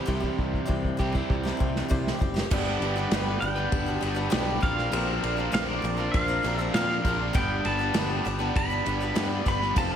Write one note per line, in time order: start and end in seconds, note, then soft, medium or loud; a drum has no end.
0.00 0.97 C3 medium
0.00 0.98 E3 loud
0.00 0.98 G3 medium
0.00 0.98 C4 medium
0.00 0.98 G4 medium
0.06 0.29 C2 medium
0.06 0.22 C3 medium
0.06 0.22 G3 medium
0.06 0.22 C4 medium
0.06 0.21 E4 medium
0.06 0.19 G4 medium
0.06 kick medium
0.20 0.65 C4 soft
0.20 0.66 E4 soft
0.20 0.67 G4 medium
0.20 kick medium
0.38 0.59 C2 medium
0.38 kick medium
0.54 kick medium
0.66 0.90 C2 medium
0.66 0.98 C3 medium
0.66 0.96 G3 medium
0.66 0.97 C4 medium
0.66 0.98 E4 medium
0.66 0.99 G4 medium
0.66 kick medium
0.84 kick medium
0.97 1.20 C2 medium
0.97 1.13 G3 medium
0.97 2.19 G3 medium
0.97 1.14 C4 medium
0.97 2.19 C4 medium
0.97 1.13 E4 medium
0.97 2.19 G4 medium
0.97 1.11 G4 medium
0.97 kick medium
1.02 2.20 C3 medium
1.02 2.20 E3 medium
1.12 1.45 C4 soft
1.12 1.44 E4 medium
1.12 1.42 G4 medium
1.12 kick medium
1.30 1.51 C2 medium
1.30 kick medium
1.43 1.57 C4 soft
1.43 1.59 E4 medium
1.43 1.59 G4 medium
1.43 snare medium
1.57 1.81 C2 medium
1.57 1.88 G3 medium
1.57 1.88 C4 medium
1.57 1.89 E4 medium
1.57 1.90 G4 medium
1.57 kick medium
1.76 snare medium
1.88 2.11 C2 medium
1.88 2.20 C3 medium
1.88 2.17 G3 medium
1.88 2.19 C4 medium
1.88 2.20 E4 medium
1.88 2.21 G4 loud
1.88 kick medium
2.07 snare medium
2.19 2.42 F#1 medium
2.19 2.35 G3 medium
2.19 2.35 C4 medium
2.19 2.35 E4 medium
2.19 2.33 G4 medium
2.19 kick medium
2.34 2.52 C4 soft
2.34 2.51 E4 soft
2.34 2.50 G4 medium
2.34 snare medium
2.50 2.76 G1 loud
2.50 2.96 G2 medium
2.50 2.97 D3 medium
2.50 2.81 G3 medium
2.50 2.97 G3 medium
2.50 2.97 B3 medium
2.50 2.82 B3 loud
2.50 4.61 D4 medium
2.50 2.83 D4 medium
2.50 2.96 D4 medium
2.50 4.61 G4 medium
2.50 2.94 G4 medium
2.50 4.61 B4 loud
2.50 2.83 B4 medium
2.50 kick loud
2.50 crash loud
2.80 3.05 G1 medium
2.80 3.11 G3 medium
2.80 2.96 B3 medium
2.80 2.99 D4 medium
2.80 ride medium
2.85 2.95 B4 medium
2.96 3.12 G3 medium
2.96 3.13 B3 medium
2.96 3.12 B3 medium
2.96 3.12 D4 medium
2.96 3.13 D4 medium
2.96 3.11 G4 medium
2.96 3.13 B4 medium
3.11 3.36 G1 medium
3.11 3.42 G2 medium
3.11 3.42 D3 medium
3.11 3.41 G3 medium
3.11 3.40 G3 medium
3.11 3.41 B3 medium
3.11 3.27 B3 medium
3.11 3.29 D4 medium
3.11 3.42 D4 medium
3.11 3.42 G4 medium
3.11 3.26 B4 medium
3.11 snare loud
3.11 ride medium
3.27 3.41 B3 medium
3.27 3.41 D4 medium
3.27 3.41 B4 medium
3.40 3.67 G1 medium
3.40 3.56 G3 medium
3.40 3.57 B3 medium
3.40 3.55 D4 medium
3.40 3.54 G4 medium
3.40 4.62 G5 loud
3.40 muted overdriven electric guitar stroke soft
3.40 ride medium
3.56 3.88 G3 soft
3.56 4.01 B3 medium
3.56 3.87 B3 soft
3.56 3.86 D4 soft
3.56 4.02 D4 medium
3.56 3.85 G4 medium
3.56 4.02 B4 medium
3.72 3.97 G1 medium
3.72 kick loud
3.72 ride loud
3.86 3.99 G3 soft
3.86 4.01 B3 medium
3.86 4.02 D4 medium
3.86 4.02 G4 medium
4.01 4.27 G1 medium
4.01 4.16 G3 medium
4.01 4.30 G3 medium
4.01 4.15 B3 medium
4.01 4.32 B3 medium
4.01 4.32 D4 medium
4.01 4.15 D4 medium
4.01 4.13 G4 medium
4.01 4.33 B4 medium
4.01 ride medium
4.15 4.30 G3 medium
4.15 4.30 B3 medium
4.15 4.30 D4 medium
4.15 4.30 G4 medium
4.30 4.57 B1 medium
4.30 4.61 G2 medium
4.30 4.61 D3 medium
4.30 4.60 G3 medium
4.30 4.60 G3 loud
4.30 4.61 B3 loud
4.30 4.46 B3 loud
4.30 4.61 D4 loud
4.30 4.48 D4 loud
4.30 4.62 G4 loud
4.30 4.45 B4 loud
4.30 snare loud
4.30 ride medium
4.46 4.60 B3 medium
4.46 4.61 D4 medium
4.46 4.60 B4 medium
4.60 4.87 A#1 medium
4.60 4.89 A#2 medium
4.60 4.90 F3 medium
4.60 4.91 F3 medium
4.60 4.77 A#3 medium
4.60 4.92 C4 medium
4.60 4.77 D4 loud
4.60 4.92 D4 medium
4.60 4.75 F4 loud
4.60 4.74 A#4 loud
4.60 4.92 A#4 medium
4.60 7.32 A#4 medium
4.60 7.32 C5 medium
4.60 5.53 F5 loud
4.60 kick loud
4.60 ride medium
4.64 7.32 D4 medium
4.76 4.90 A#3 medium
4.76 4.91 D4 medium
4.76 4.90 F4 medium
4.76 4.91 A#4 medium
4.76 snare soft
4.90 5.17 A#1 medium
4.90 5.51 A#2 medium
4.90 5.37 A#2 medium
4.90 5.38 D3 medium
4.90 5.52 F3 loud
4.90 5.38 F3 medium
4.90 5.20 A#3 loud
4.90 5.38 C4 medium
4.90 5.22 D4 loud
4.90 5.37 D4 medium
4.90 5.22 F4 medium
4.90 5.23 A#4 loud
4.90 5.36 A#4 medium
4.90 ride loud
5.21 5.48 A#1 medium
5.21 5.39 A#3 medium
5.21 5.40 D4 medium
5.21 5.37 F4 medium
5.21 5.37 A#4 loud
5.21 ride medium
5.37 5.52 F3 soft
5.37 5.52 A#3 medium
5.37 5.52 C4 soft
5.37 5.52 D4 soft
5.37 5.54 D4 medium
5.37 5.54 F4 medium
5.37 5.53 A#4 soft
5.37 5.54 A#4 medium
5.52 5.78 A#1 medium
5.52 5.83 A#2 medium
5.52 5.98 A#2 medium
5.52 5.83 D3 medium
5.52 5.81 F3 medium
5.52 5.98 F3 medium
5.52 5.70 A#3 loud
5.52 5.82 C4 medium
5.52 5.83 D4 medium
5.52 5.70 D4 medium
5.52 5.69 F4 loud
5.52 5.84 A#4 medium
5.52 5.67 A#4 medium
5.52 5.69 F5 medium
5.52 snare loud
5.52 ride loud
5.69 5.84 A#3 medium
5.69 5.85 D4 medium
5.69 5.84 F4 medium
5.69 5.85 A#4 medium
5.69 6.15 D5 medium
5.82 6.08 A#1 medium
5.82 5.98 F3 medium
5.82 5.97 C4 medium
5.82 5.96 D4 medium
5.82 5.96 A#4 medium
5.82 muted overdriven electric guitar stroke soft
5.82 ride medium
5.97 6.29 F3 soft
5.97 6.42 A#3 medium
5.97 6.29 C4 soft
5.97 6.28 D4 medium
5.97 6.43 D4 medium
5.97 6.44 F4 medium
5.97 6.27 A#4 medium
5.97 6.45 A#4 medium
6.12 6.39 A#1 medium
6.12 6.57 F5 loud
6.12 kick loud
6.12 ride loud
6.28 6.42 F3 soft
6.28 6.43 C4 soft
6.28 6.44 D4 medium
6.28 6.43 A#4 medium
6.43 6.69 A#1 medium
6.43 6.58 F3 medium
6.43 6.73 A#3 medium
6.43 6.59 C4 medium
6.43 6.73 D4 medium
6.43 6.58 D4 medium
6.43 6.74 F4 medium
6.43 6.75 A#4 medium
6.43 6.57 A#4 medium
6.43 ride medium
6.57 6.75 C4 medium
6.57 6.74 D4 medium
6.57 6.74 A#4 medium
6.57 6.73 E5 loud
6.61 6.75 F3 medium
6.73 7.19 A#2 loud
6.73 6.99 A#2 loud
6.73 7.05 A#2 medium
6.73 7.05 D3 medium
6.73 7.19 F3 medium
6.73 7.04 F3 medium
6.73 6.90 A#3 loud
6.73 7.05 C4 medium
6.73 6.90 D4 loud
6.73 7.05 D4 medium
6.73 6.89 F4 loud
6.73 6.88 A#4 loud
6.73 7.06 A#4 medium
6.73 7.35 F5 loud
6.73 snare medium
6.73 ride loud
6.89 7.04 A#3 medium
6.89 7.04 D4 medium
6.89 7.05 F4 medium
6.89 7.06 A#4 medium
7.04 7.29 A#1 medium
7.04 7.34 F3 medium
7.04 7.21 A#3 medium
7.04 7.35 C4 medium
7.04 7.20 D4 medium
7.04 7.34 D4 medium
7.04 7.19 F4 medium
7.04 7.18 A#4 medium
7.04 7.35 A#4 medium
7.04 kick medium
7.04 ride medium
7.19 7.34 A#3 medium
7.19 7.33 D4 medium
7.19 7.33 F4 medium
7.19 7.32 A#4 medium
7.33 7.59 G1 medium
7.33 7.79 G2 medium
7.33 7.79 D3 medium
7.33 7.80 G3 medium
7.33 7.64 G3 loud
7.33 7.80 B3 medium
7.33 7.66 B3 medium
7.33 9.73 D4 medium
7.33 7.79 D4 medium
7.33 7.65 D4 medium
7.33 9.73 G4 medium
7.33 9.73 B4 medium
7.33 7.78 B4 medium
7.33 7.63 G5 loud
7.33 kick loud
7.33 ride medium
7.37 7.67 B4 loud
7.65 7.90 G1 medium
7.65 7.92 G3 medium
7.65 7.80 B3 medium
7.65 7.81 D4 medium
7.65 7.79 B4 medium
7.65 8.56 A5 loud
7.65 ride medium
7.79 7.94 G3 soft
7.79 7.94 B3 medium
7.79 7.94 B3 soft
7.79 7.94 D4 soft
7.79 7.93 D4 medium
7.79 7.94 B4 medium
7.93 8.19 G1 medium
7.93 8.24 G2 medium
7.93 8.25 D3 medium
7.93 8.25 G3 medium
7.93 8.23 G3 medium
7.93 8.24 B3 medium
7.93 8.10 B3 loud
7.93 8.11 D4 medium
7.93 8.25 D4 medium
7.93 8.09 B4 loud
7.93 8.26 B4 medium
7.93 snare loud
7.93 ride loud
8.10 8.26 B3 medium
8.10 8.25 D4 medium
8.10 8.26 B4 medium
8.25 8.50 G1 medium
8.25 8.40 G3 medium
8.25 8.40 B3 medium
8.25 8.39 D4 medium
8.25 8.38 B4 medium
8.25 muted overdriven electric guitar stroke soft
8.25 ride medium
8.39 8.71 G3 soft
8.39 8.85 B3 medium
8.39 8.71 B3 soft
8.39 8.70 D4 medium
8.39 8.85 D4 medium
8.39 8.69 B4 medium
8.39 8.86 B4 medium
8.56 8.80 G1 medium
8.56 9.47 B5 loud
8.56 kick loud
8.56 ride loud
8.70 8.85 G3 soft
8.70 8.85 B3 medium
8.70 8.86 D4 medium
8.70 8.85 B4 medium
8.85 9.11 G1 medium
8.85 9.13 G3 medium
8.85 9.01 G3 medium
8.85 9.01 B3 medium
8.85 9.15 B3 medium
8.85 9.14 D4 medium
8.85 9.00 D4 medium
8.85 9.16 B4 medium
8.85 8.99 B4 medium
8.85 ride medium
9.00 9.15 G3 medium
9.00 9.16 B3 medium
9.00 9.16 D4 medium
9.00 9.16 B4 medium
9.14 9.46 G2 medium
9.14 9.40 G2 loud
9.14 9.46 D3 medium
9.14 9.44 G3 loud
9.14 9.44 G3 medium
9.14 9.30 B3 loud
9.14 9.45 B3 medium
9.14 9.31 D4 loud
9.14 9.47 D4 medium
9.14 9.29 B4 loud
9.14 9.47 B4 medium
9.14 snare loud
9.14 ride medium
9.30 9.46 B3 medium
9.30 9.45 D4 medium
9.30 9.47 B4 medium
9.45 9.70 G1 medium
9.45 9.74 G3 medium
9.45 9.76 G3 medium
9.45 9.76 B3 medium
9.45 9.60 B3 medium
9.45 9.61 D4 medium
9.45 9.77 D4 medium
9.45 9.59 B4 medium
9.45 9.77 B4 medium
9.45 9.77 B5 loud
9.45 kick medium
9.45 ride medium
9.60 9.75 B3 medium
9.60 9.75 D4 medium
9.60 9.74 B4 medium
9.60 snare soft
9.73 9.96 F1 medium
9.73 9.96 F3 loud
9.73 9.96 F3 medium
9.73 9.96 A3 loud
9.73 9.96 C4 loud
9.73 9.96 C4 medium
9.73 9.96 F4 loud
9.73 9.96 A4 loud
9.73 9.96 C5 medium
9.73 kick loud
9.73 ride medium
9.78 9.96 F4 medium
9.78 9.96 A4 medium
9.78 9.91 A5 loud
9.92 9.96 A5 loud